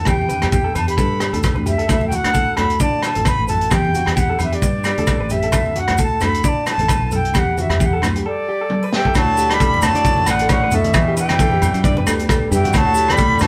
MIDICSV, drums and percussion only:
0, 0, Header, 1, 2, 480
1, 0, Start_track
1, 0, Key_signature, 2, "major"
1, 0, Tempo, 454201
1, 79, Time_signature, 4, 2, 24, 8
1, 8239, Tempo, 449438
1, 14300, End_track
2, 0, Start_track
2, 0, Title_t, "Drums"
2, 56, Note_on_c, 9, 37, 62
2, 56, Note_on_c, 9, 42, 43
2, 68, Note_on_c, 9, 36, 78
2, 75, Note_on_c, 9, 70, 80
2, 82, Note_on_c, 9, 68, 57
2, 162, Note_off_c, 9, 37, 0
2, 162, Note_off_c, 9, 42, 0
2, 174, Note_off_c, 9, 36, 0
2, 180, Note_off_c, 9, 70, 0
2, 188, Note_off_c, 9, 68, 0
2, 227, Note_on_c, 9, 63, 57
2, 308, Note_on_c, 9, 42, 47
2, 315, Note_on_c, 9, 70, 61
2, 326, Note_off_c, 9, 63, 0
2, 326, Note_on_c, 9, 63, 59
2, 414, Note_off_c, 9, 42, 0
2, 421, Note_off_c, 9, 70, 0
2, 431, Note_off_c, 9, 63, 0
2, 442, Note_on_c, 9, 37, 60
2, 442, Note_on_c, 9, 42, 43
2, 446, Note_on_c, 9, 68, 63
2, 457, Note_on_c, 9, 64, 57
2, 548, Note_off_c, 9, 37, 0
2, 548, Note_off_c, 9, 42, 0
2, 550, Note_on_c, 9, 42, 43
2, 552, Note_off_c, 9, 68, 0
2, 554, Note_on_c, 9, 36, 76
2, 555, Note_on_c, 9, 70, 85
2, 562, Note_off_c, 9, 64, 0
2, 656, Note_off_c, 9, 42, 0
2, 659, Note_off_c, 9, 36, 0
2, 660, Note_off_c, 9, 70, 0
2, 796, Note_on_c, 9, 42, 46
2, 796, Note_on_c, 9, 70, 67
2, 800, Note_on_c, 9, 68, 60
2, 801, Note_on_c, 9, 64, 63
2, 901, Note_off_c, 9, 42, 0
2, 902, Note_off_c, 9, 70, 0
2, 905, Note_off_c, 9, 68, 0
2, 906, Note_off_c, 9, 64, 0
2, 929, Note_on_c, 9, 42, 45
2, 1034, Note_on_c, 9, 36, 75
2, 1035, Note_off_c, 9, 42, 0
2, 1037, Note_on_c, 9, 42, 40
2, 1037, Note_on_c, 9, 70, 79
2, 1139, Note_off_c, 9, 36, 0
2, 1142, Note_off_c, 9, 42, 0
2, 1143, Note_off_c, 9, 70, 0
2, 1272, Note_on_c, 9, 37, 63
2, 1272, Note_on_c, 9, 42, 45
2, 1279, Note_on_c, 9, 70, 60
2, 1283, Note_on_c, 9, 68, 61
2, 1377, Note_off_c, 9, 37, 0
2, 1377, Note_off_c, 9, 42, 0
2, 1385, Note_off_c, 9, 70, 0
2, 1389, Note_off_c, 9, 68, 0
2, 1409, Note_on_c, 9, 63, 63
2, 1412, Note_on_c, 9, 42, 45
2, 1510, Note_on_c, 9, 70, 81
2, 1515, Note_off_c, 9, 63, 0
2, 1518, Note_off_c, 9, 42, 0
2, 1519, Note_on_c, 9, 36, 80
2, 1520, Note_on_c, 9, 68, 56
2, 1524, Note_on_c, 9, 37, 61
2, 1524, Note_on_c, 9, 42, 44
2, 1616, Note_off_c, 9, 70, 0
2, 1625, Note_off_c, 9, 36, 0
2, 1626, Note_off_c, 9, 68, 0
2, 1630, Note_off_c, 9, 37, 0
2, 1630, Note_off_c, 9, 42, 0
2, 1647, Note_on_c, 9, 63, 62
2, 1753, Note_off_c, 9, 63, 0
2, 1754, Note_on_c, 9, 64, 66
2, 1757, Note_on_c, 9, 42, 48
2, 1759, Note_on_c, 9, 70, 65
2, 1860, Note_off_c, 9, 64, 0
2, 1863, Note_off_c, 9, 42, 0
2, 1865, Note_off_c, 9, 70, 0
2, 1891, Note_on_c, 9, 42, 43
2, 1996, Note_off_c, 9, 42, 0
2, 1998, Note_on_c, 9, 37, 62
2, 1998, Note_on_c, 9, 42, 48
2, 1998, Note_on_c, 9, 68, 55
2, 1998, Note_on_c, 9, 70, 82
2, 1999, Note_on_c, 9, 36, 78
2, 2103, Note_off_c, 9, 37, 0
2, 2103, Note_off_c, 9, 42, 0
2, 2103, Note_off_c, 9, 68, 0
2, 2104, Note_off_c, 9, 36, 0
2, 2104, Note_off_c, 9, 70, 0
2, 2126, Note_on_c, 9, 63, 61
2, 2232, Note_off_c, 9, 63, 0
2, 2237, Note_on_c, 9, 63, 64
2, 2239, Note_on_c, 9, 70, 65
2, 2241, Note_on_c, 9, 42, 48
2, 2343, Note_off_c, 9, 63, 0
2, 2344, Note_off_c, 9, 70, 0
2, 2346, Note_off_c, 9, 42, 0
2, 2370, Note_on_c, 9, 68, 59
2, 2372, Note_on_c, 9, 37, 62
2, 2372, Note_on_c, 9, 42, 48
2, 2474, Note_on_c, 9, 70, 88
2, 2476, Note_off_c, 9, 68, 0
2, 2477, Note_off_c, 9, 37, 0
2, 2477, Note_off_c, 9, 42, 0
2, 2480, Note_on_c, 9, 36, 74
2, 2480, Note_on_c, 9, 42, 45
2, 2580, Note_off_c, 9, 70, 0
2, 2586, Note_off_c, 9, 36, 0
2, 2586, Note_off_c, 9, 42, 0
2, 2712, Note_on_c, 9, 68, 60
2, 2718, Note_on_c, 9, 37, 60
2, 2718, Note_on_c, 9, 42, 45
2, 2720, Note_on_c, 9, 64, 61
2, 2818, Note_off_c, 9, 68, 0
2, 2823, Note_off_c, 9, 37, 0
2, 2823, Note_off_c, 9, 42, 0
2, 2825, Note_off_c, 9, 64, 0
2, 2851, Note_on_c, 9, 42, 43
2, 2956, Note_off_c, 9, 42, 0
2, 2957, Note_on_c, 9, 42, 45
2, 2957, Note_on_c, 9, 70, 78
2, 2959, Note_on_c, 9, 36, 79
2, 3063, Note_off_c, 9, 42, 0
2, 3063, Note_off_c, 9, 70, 0
2, 3065, Note_off_c, 9, 36, 0
2, 3195, Note_on_c, 9, 68, 63
2, 3198, Note_on_c, 9, 37, 61
2, 3198, Note_on_c, 9, 42, 46
2, 3207, Note_on_c, 9, 70, 61
2, 3301, Note_off_c, 9, 68, 0
2, 3304, Note_off_c, 9, 37, 0
2, 3304, Note_off_c, 9, 42, 0
2, 3313, Note_off_c, 9, 70, 0
2, 3330, Note_on_c, 9, 42, 43
2, 3352, Note_on_c, 9, 63, 65
2, 3435, Note_off_c, 9, 42, 0
2, 3435, Note_on_c, 9, 68, 52
2, 3436, Note_on_c, 9, 37, 62
2, 3436, Note_on_c, 9, 42, 44
2, 3441, Note_on_c, 9, 36, 75
2, 3447, Note_on_c, 9, 70, 74
2, 3458, Note_off_c, 9, 63, 0
2, 3540, Note_off_c, 9, 68, 0
2, 3542, Note_off_c, 9, 37, 0
2, 3542, Note_off_c, 9, 42, 0
2, 3547, Note_off_c, 9, 36, 0
2, 3552, Note_off_c, 9, 70, 0
2, 3675, Note_on_c, 9, 70, 61
2, 3685, Note_on_c, 9, 42, 46
2, 3697, Note_on_c, 9, 64, 67
2, 3781, Note_off_c, 9, 70, 0
2, 3791, Note_off_c, 9, 42, 0
2, 3803, Note_off_c, 9, 64, 0
2, 3815, Note_on_c, 9, 42, 39
2, 3915, Note_on_c, 9, 68, 59
2, 3919, Note_on_c, 9, 70, 77
2, 3921, Note_off_c, 9, 42, 0
2, 3924, Note_on_c, 9, 36, 77
2, 3926, Note_on_c, 9, 37, 61
2, 3926, Note_on_c, 9, 42, 42
2, 4021, Note_off_c, 9, 68, 0
2, 4025, Note_off_c, 9, 70, 0
2, 4029, Note_off_c, 9, 36, 0
2, 4032, Note_off_c, 9, 37, 0
2, 4032, Note_off_c, 9, 42, 0
2, 4067, Note_on_c, 9, 63, 60
2, 4168, Note_on_c, 9, 70, 62
2, 4169, Note_on_c, 9, 42, 46
2, 4173, Note_off_c, 9, 63, 0
2, 4178, Note_on_c, 9, 63, 64
2, 4274, Note_off_c, 9, 70, 0
2, 4275, Note_off_c, 9, 42, 0
2, 4284, Note_off_c, 9, 63, 0
2, 4293, Note_on_c, 9, 68, 63
2, 4305, Note_on_c, 9, 37, 63
2, 4305, Note_on_c, 9, 42, 42
2, 4398, Note_off_c, 9, 68, 0
2, 4404, Note_on_c, 9, 70, 81
2, 4405, Note_on_c, 9, 36, 79
2, 4409, Note_off_c, 9, 42, 0
2, 4409, Note_on_c, 9, 42, 43
2, 4411, Note_off_c, 9, 37, 0
2, 4510, Note_off_c, 9, 70, 0
2, 4511, Note_off_c, 9, 36, 0
2, 4515, Note_off_c, 9, 42, 0
2, 4637, Note_on_c, 9, 68, 55
2, 4641, Note_on_c, 9, 70, 64
2, 4644, Note_on_c, 9, 64, 59
2, 4652, Note_on_c, 9, 42, 43
2, 4742, Note_off_c, 9, 68, 0
2, 4746, Note_off_c, 9, 70, 0
2, 4750, Note_off_c, 9, 64, 0
2, 4757, Note_off_c, 9, 42, 0
2, 4780, Note_on_c, 9, 42, 43
2, 4884, Note_off_c, 9, 42, 0
2, 4884, Note_on_c, 9, 36, 74
2, 4884, Note_on_c, 9, 42, 41
2, 4886, Note_on_c, 9, 70, 80
2, 4990, Note_off_c, 9, 36, 0
2, 4990, Note_off_c, 9, 42, 0
2, 4992, Note_off_c, 9, 70, 0
2, 5112, Note_on_c, 9, 70, 65
2, 5115, Note_on_c, 9, 68, 62
2, 5126, Note_on_c, 9, 37, 60
2, 5126, Note_on_c, 9, 42, 45
2, 5217, Note_off_c, 9, 70, 0
2, 5220, Note_off_c, 9, 68, 0
2, 5232, Note_off_c, 9, 37, 0
2, 5232, Note_off_c, 9, 42, 0
2, 5258, Note_on_c, 9, 42, 41
2, 5272, Note_on_c, 9, 63, 55
2, 5355, Note_on_c, 9, 70, 85
2, 5356, Note_on_c, 9, 68, 53
2, 5359, Note_off_c, 9, 42, 0
2, 5359, Note_on_c, 9, 37, 65
2, 5359, Note_on_c, 9, 42, 42
2, 5363, Note_on_c, 9, 36, 77
2, 5377, Note_off_c, 9, 63, 0
2, 5460, Note_off_c, 9, 70, 0
2, 5462, Note_off_c, 9, 68, 0
2, 5465, Note_off_c, 9, 37, 0
2, 5465, Note_off_c, 9, 42, 0
2, 5469, Note_off_c, 9, 36, 0
2, 5596, Note_on_c, 9, 70, 64
2, 5598, Note_on_c, 9, 42, 47
2, 5617, Note_on_c, 9, 64, 60
2, 5702, Note_off_c, 9, 70, 0
2, 5703, Note_off_c, 9, 42, 0
2, 5723, Note_off_c, 9, 64, 0
2, 5731, Note_on_c, 9, 42, 43
2, 5835, Note_off_c, 9, 42, 0
2, 5835, Note_on_c, 9, 37, 60
2, 5835, Note_on_c, 9, 42, 45
2, 5837, Note_on_c, 9, 68, 56
2, 5838, Note_on_c, 9, 70, 85
2, 5843, Note_on_c, 9, 36, 81
2, 5941, Note_off_c, 9, 37, 0
2, 5941, Note_off_c, 9, 42, 0
2, 5943, Note_off_c, 9, 68, 0
2, 5944, Note_off_c, 9, 70, 0
2, 5949, Note_off_c, 9, 36, 0
2, 5980, Note_on_c, 9, 63, 54
2, 6081, Note_on_c, 9, 42, 51
2, 6084, Note_off_c, 9, 63, 0
2, 6084, Note_on_c, 9, 63, 59
2, 6187, Note_off_c, 9, 42, 0
2, 6190, Note_off_c, 9, 63, 0
2, 6209, Note_on_c, 9, 68, 59
2, 6210, Note_on_c, 9, 64, 55
2, 6211, Note_on_c, 9, 37, 60
2, 6211, Note_on_c, 9, 42, 48
2, 6315, Note_off_c, 9, 64, 0
2, 6315, Note_off_c, 9, 68, 0
2, 6316, Note_on_c, 9, 70, 94
2, 6317, Note_off_c, 9, 37, 0
2, 6317, Note_off_c, 9, 42, 0
2, 6324, Note_on_c, 9, 42, 49
2, 6327, Note_on_c, 9, 36, 78
2, 6422, Note_off_c, 9, 70, 0
2, 6430, Note_off_c, 9, 42, 0
2, 6433, Note_off_c, 9, 36, 0
2, 6556, Note_on_c, 9, 70, 74
2, 6559, Note_on_c, 9, 64, 63
2, 6567, Note_on_c, 9, 37, 60
2, 6567, Note_on_c, 9, 42, 48
2, 6569, Note_on_c, 9, 68, 60
2, 6662, Note_off_c, 9, 70, 0
2, 6665, Note_off_c, 9, 64, 0
2, 6673, Note_off_c, 9, 37, 0
2, 6673, Note_off_c, 9, 42, 0
2, 6674, Note_off_c, 9, 68, 0
2, 6704, Note_on_c, 9, 42, 46
2, 6803, Note_off_c, 9, 42, 0
2, 6803, Note_on_c, 9, 42, 46
2, 6806, Note_on_c, 9, 36, 82
2, 6806, Note_on_c, 9, 70, 90
2, 6908, Note_off_c, 9, 42, 0
2, 6911, Note_off_c, 9, 70, 0
2, 6912, Note_off_c, 9, 36, 0
2, 7039, Note_on_c, 9, 70, 70
2, 7041, Note_on_c, 9, 68, 61
2, 7046, Note_on_c, 9, 37, 65
2, 7046, Note_on_c, 9, 42, 48
2, 7144, Note_off_c, 9, 70, 0
2, 7147, Note_off_c, 9, 68, 0
2, 7151, Note_off_c, 9, 37, 0
2, 7151, Note_off_c, 9, 42, 0
2, 7174, Note_on_c, 9, 42, 46
2, 7177, Note_on_c, 9, 63, 66
2, 7274, Note_on_c, 9, 68, 55
2, 7276, Note_off_c, 9, 42, 0
2, 7276, Note_on_c, 9, 37, 63
2, 7276, Note_on_c, 9, 42, 46
2, 7283, Note_off_c, 9, 63, 0
2, 7284, Note_on_c, 9, 36, 78
2, 7288, Note_on_c, 9, 70, 84
2, 7380, Note_off_c, 9, 68, 0
2, 7382, Note_off_c, 9, 37, 0
2, 7382, Note_off_c, 9, 42, 0
2, 7390, Note_off_c, 9, 36, 0
2, 7393, Note_off_c, 9, 70, 0
2, 7516, Note_on_c, 9, 70, 74
2, 7524, Note_on_c, 9, 42, 44
2, 7524, Note_on_c, 9, 64, 70
2, 7622, Note_off_c, 9, 70, 0
2, 7630, Note_off_c, 9, 42, 0
2, 7630, Note_off_c, 9, 64, 0
2, 7660, Note_on_c, 9, 42, 43
2, 7755, Note_on_c, 9, 68, 57
2, 7759, Note_on_c, 9, 70, 91
2, 7765, Note_off_c, 9, 42, 0
2, 7765, Note_on_c, 9, 37, 61
2, 7765, Note_on_c, 9, 42, 47
2, 7767, Note_on_c, 9, 36, 80
2, 7861, Note_off_c, 9, 68, 0
2, 7865, Note_off_c, 9, 70, 0
2, 7871, Note_off_c, 9, 37, 0
2, 7871, Note_off_c, 9, 42, 0
2, 7872, Note_off_c, 9, 36, 0
2, 8004, Note_on_c, 9, 70, 67
2, 8008, Note_on_c, 9, 63, 70
2, 8014, Note_on_c, 9, 42, 45
2, 8109, Note_off_c, 9, 70, 0
2, 8114, Note_off_c, 9, 63, 0
2, 8120, Note_off_c, 9, 42, 0
2, 8133, Note_on_c, 9, 68, 57
2, 8139, Note_on_c, 9, 37, 63
2, 8139, Note_on_c, 9, 42, 42
2, 8156, Note_on_c, 9, 64, 64
2, 8239, Note_off_c, 9, 68, 0
2, 8245, Note_off_c, 9, 37, 0
2, 8245, Note_off_c, 9, 42, 0
2, 8246, Note_on_c, 9, 36, 74
2, 8247, Note_on_c, 9, 42, 41
2, 8249, Note_on_c, 9, 70, 98
2, 8261, Note_off_c, 9, 64, 0
2, 8353, Note_off_c, 9, 36, 0
2, 8354, Note_off_c, 9, 42, 0
2, 8356, Note_off_c, 9, 70, 0
2, 8478, Note_on_c, 9, 68, 62
2, 8488, Note_on_c, 9, 37, 64
2, 8488, Note_on_c, 9, 42, 43
2, 8493, Note_on_c, 9, 70, 77
2, 8499, Note_on_c, 9, 64, 68
2, 8585, Note_off_c, 9, 68, 0
2, 8595, Note_off_c, 9, 37, 0
2, 8595, Note_off_c, 9, 42, 0
2, 8600, Note_off_c, 9, 70, 0
2, 8606, Note_off_c, 9, 64, 0
2, 8622, Note_on_c, 9, 42, 42
2, 8729, Note_off_c, 9, 42, 0
2, 9203, Note_on_c, 9, 48, 41
2, 9310, Note_off_c, 9, 48, 0
2, 9445, Note_on_c, 9, 38, 56
2, 9552, Note_off_c, 9, 38, 0
2, 9580, Note_on_c, 9, 36, 57
2, 9678, Note_on_c, 9, 70, 66
2, 9683, Note_on_c, 9, 68, 65
2, 9687, Note_off_c, 9, 36, 0
2, 9689, Note_on_c, 9, 36, 85
2, 9692, Note_on_c, 9, 37, 62
2, 9692, Note_on_c, 9, 42, 49
2, 9785, Note_off_c, 9, 70, 0
2, 9789, Note_off_c, 9, 68, 0
2, 9796, Note_off_c, 9, 36, 0
2, 9799, Note_off_c, 9, 37, 0
2, 9799, Note_off_c, 9, 42, 0
2, 9920, Note_on_c, 9, 70, 87
2, 9938, Note_on_c, 9, 42, 54
2, 10027, Note_off_c, 9, 70, 0
2, 10045, Note_off_c, 9, 42, 0
2, 10055, Note_on_c, 9, 68, 65
2, 10065, Note_on_c, 9, 37, 64
2, 10065, Note_on_c, 9, 42, 52
2, 10161, Note_off_c, 9, 68, 0
2, 10167, Note_on_c, 9, 70, 76
2, 10169, Note_on_c, 9, 36, 80
2, 10172, Note_off_c, 9, 37, 0
2, 10172, Note_off_c, 9, 42, 0
2, 10172, Note_on_c, 9, 42, 49
2, 10274, Note_off_c, 9, 70, 0
2, 10276, Note_off_c, 9, 36, 0
2, 10279, Note_off_c, 9, 42, 0
2, 10314, Note_on_c, 9, 63, 60
2, 10398, Note_on_c, 9, 70, 100
2, 10403, Note_on_c, 9, 68, 62
2, 10410, Note_on_c, 9, 37, 72
2, 10410, Note_on_c, 9, 42, 49
2, 10421, Note_off_c, 9, 63, 0
2, 10427, Note_on_c, 9, 64, 64
2, 10505, Note_off_c, 9, 70, 0
2, 10510, Note_off_c, 9, 68, 0
2, 10517, Note_off_c, 9, 37, 0
2, 10517, Note_off_c, 9, 42, 0
2, 10533, Note_off_c, 9, 64, 0
2, 10538, Note_on_c, 9, 42, 49
2, 10546, Note_on_c, 9, 70, 25
2, 10640, Note_off_c, 9, 42, 0
2, 10640, Note_on_c, 9, 42, 48
2, 10643, Note_on_c, 9, 36, 80
2, 10650, Note_off_c, 9, 70, 0
2, 10650, Note_on_c, 9, 70, 72
2, 10747, Note_off_c, 9, 42, 0
2, 10750, Note_off_c, 9, 36, 0
2, 10757, Note_off_c, 9, 70, 0
2, 10780, Note_on_c, 9, 63, 77
2, 10875, Note_on_c, 9, 37, 68
2, 10875, Note_on_c, 9, 42, 49
2, 10878, Note_on_c, 9, 70, 91
2, 10886, Note_off_c, 9, 63, 0
2, 10888, Note_on_c, 9, 68, 68
2, 10982, Note_off_c, 9, 37, 0
2, 10982, Note_off_c, 9, 42, 0
2, 10984, Note_off_c, 9, 70, 0
2, 10995, Note_off_c, 9, 68, 0
2, 11008, Note_on_c, 9, 42, 50
2, 11010, Note_on_c, 9, 70, 26
2, 11115, Note_off_c, 9, 42, 0
2, 11115, Note_off_c, 9, 70, 0
2, 11115, Note_on_c, 9, 70, 68
2, 11117, Note_on_c, 9, 37, 69
2, 11117, Note_on_c, 9, 42, 47
2, 11119, Note_on_c, 9, 68, 56
2, 11121, Note_on_c, 9, 36, 87
2, 11222, Note_off_c, 9, 70, 0
2, 11224, Note_off_c, 9, 37, 0
2, 11224, Note_off_c, 9, 42, 0
2, 11226, Note_off_c, 9, 68, 0
2, 11228, Note_off_c, 9, 36, 0
2, 11352, Note_on_c, 9, 70, 95
2, 11356, Note_on_c, 9, 64, 76
2, 11358, Note_on_c, 9, 42, 50
2, 11459, Note_off_c, 9, 70, 0
2, 11463, Note_off_c, 9, 64, 0
2, 11464, Note_off_c, 9, 42, 0
2, 11491, Note_on_c, 9, 42, 46
2, 11493, Note_on_c, 9, 63, 72
2, 11591, Note_on_c, 9, 70, 75
2, 11595, Note_off_c, 9, 42, 0
2, 11595, Note_on_c, 9, 37, 71
2, 11595, Note_on_c, 9, 42, 48
2, 11599, Note_on_c, 9, 36, 91
2, 11600, Note_off_c, 9, 63, 0
2, 11601, Note_on_c, 9, 68, 61
2, 11698, Note_off_c, 9, 70, 0
2, 11702, Note_off_c, 9, 37, 0
2, 11702, Note_off_c, 9, 42, 0
2, 11706, Note_off_c, 9, 36, 0
2, 11707, Note_off_c, 9, 68, 0
2, 11837, Note_on_c, 9, 42, 51
2, 11842, Note_on_c, 9, 70, 97
2, 11944, Note_off_c, 9, 42, 0
2, 11949, Note_off_c, 9, 70, 0
2, 11971, Note_on_c, 9, 37, 67
2, 11971, Note_on_c, 9, 42, 48
2, 11972, Note_on_c, 9, 68, 68
2, 11987, Note_on_c, 9, 63, 77
2, 12078, Note_off_c, 9, 37, 0
2, 12078, Note_off_c, 9, 42, 0
2, 12078, Note_off_c, 9, 68, 0
2, 12079, Note_on_c, 9, 36, 88
2, 12079, Note_on_c, 9, 42, 47
2, 12082, Note_on_c, 9, 70, 78
2, 12093, Note_off_c, 9, 63, 0
2, 12186, Note_off_c, 9, 36, 0
2, 12186, Note_off_c, 9, 42, 0
2, 12189, Note_off_c, 9, 70, 0
2, 12210, Note_on_c, 9, 63, 65
2, 12317, Note_off_c, 9, 63, 0
2, 12319, Note_on_c, 9, 42, 48
2, 12322, Note_on_c, 9, 68, 64
2, 12329, Note_on_c, 9, 70, 104
2, 12331, Note_on_c, 9, 64, 69
2, 12425, Note_off_c, 9, 42, 0
2, 12429, Note_off_c, 9, 68, 0
2, 12436, Note_off_c, 9, 70, 0
2, 12438, Note_off_c, 9, 64, 0
2, 12451, Note_on_c, 9, 42, 44
2, 12460, Note_on_c, 9, 70, 27
2, 12557, Note_off_c, 9, 42, 0
2, 12557, Note_on_c, 9, 42, 46
2, 12558, Note_on_c, 9, 36, 89
2, 12561, Note_off_c, 9, 70, 0
2, 12561, Note_on_c, 9, 70, 70
2, 12664, Note_off_c, 9, 42, 0
2, 12665, Note_off_c, 9, 36, 0
2, 12668, Note_off_c, 9, 70, 0
2, 12695, Note_on_c, 9, 63, 77
2, 12801, Note_on_c, 9, 37, 64
2, 12801, Note_on_c, 9, 42, 48
2, 12801, Note_on_c, 9, 68, 70
2, 12802, Note_off_c, 9, 63, 0
2, 12802, Note_on_c, 9, 70, 88
2, 12907, Note_off_c, 9, 68, 0
2, 12908, Note_off_c, 9, 37, 0
2, 12908, Note_off_c, 9, 42, 0
2, 12909, Note_off_c, 9, 70, 0
2, 12935, Note_on_c, 9, 42, 45
2, 12937, Note_on_c, 9, 70, 27
2, 13037, Note_on_c, 9, 68, 61
2, 13041, Note_on_c, 9, 36, 91
2, 13042, Note_off_c, 9, 42, 0
2, 13044, Note_off_c, 9, 70, 0
2, 13046, Note_on_c, 9, 37, 68
2, 13046, Note_on_c, 9, 42, 51
2, 13054, Note_on_c, 9, 70, 76
2, 13144, Note_off_c, 9, 68, 0
2, 13148, Note_off_c, 9, 36, 0
2, 13153, Note_off_c, 9, 37, 0
2, 13153, Note_off_c, 9, 42, 0
2, 13161, Note_off_c, 9, 70, 0
2, 13282, Note_on_c, 9, 64, 71
2, 13283, Note_on_c, 9, 70, 91
2, 13289, Note_on_c, 9, 42, 52
2, 13389, Note_off_c, 9, 64, 0
2, 13390, Note_off_c, 9, 70, 0
2, 13396, Note_off_c, 9, 42, 0
2, 13415, Note_on_c, 9, 63, 67
2, 13420, Note_on_c, 9, 42, 48
2, 13506, Note_on_c, 9, 70, 73
2, 13513, Note_on_c, 9, 68, 62
2, 13519, Note_on_c, 9, 36, 87
2, 13522, Note_off_c, 9, 63, 0
2, 13526, Note_off_c, 9, 42, 0
2, 13526, Note_on_c, 9, 37, 65
2, 13526, Note_on_c, 9, 42, 52
2, 13613, Note_off_c, 9, 70, 0
2, 13620, Note_off_c, 9, 68, 0
2, 13626, Note_off_c, 9, 36, 0
2, 13633, Note_off_c, 9, 37, 0
2, 13633, Note_off_c, 9, 42, 0
2, 13736, Note_on_c, 9, 70, 91
2, 13765, Note_on_c, 9, 42, 53
2, 13842, Note_off_c, 9, 70, 0
2, 13872, Note_off_c, 9, 42, 0
2, 13884, Note_on_c, 9, 68, 66
2, 13900, Note_on_c, 9, 63, 66
2, 13901, Note_on_c, 9, 37, 70
2, 13901, Note_on_c, 9, 42, 51
2, 13980, Note_on_c, 9, 70, 78
2, 13991, Note_off_c, 9, 68, 0
2, 13994, Note_on_c, 9, 36, 84
2, 13997, Note_off_c, 9, 42, 0
2, 13997, Note_on_c, 9, 42, 49
2, 14007, Note_off_c, 9, 63, 0
2, 14008, Note_off_c, 9, 37, 0
2, 14087, Note_off_c, 9, 70, 0
2, 14101, Note_off_c, 9, 36, 0
2, 14104, Note_off_c, 9, 42, 0
2, 14134, Note_on_c, 9, 63, 60
2, 14211, Note_on_c, 9, 70, 92
2, 14232, Note_on_c, 9, 37, 66
2, 14232, Note_on_c, 9, 42, 52
2, 14239, Note_on_c, 9, 68, 64
2, 14241, Note_off_c, 9, 63, 0
2, 14242, Note_on_c, 9, 64, 68
2, 14300, Note_off_c, 9, 37, 0
2, 14300, Note_off_c, 9, 42, 0
2, 14300, Note_off_c, 9, 64, 0
2, 14300, Note_off_c, 9, 68, 0
2, 14300, Note_off_c, 9, 70, 0
2, 14300, End_track
0, 0, End_of_file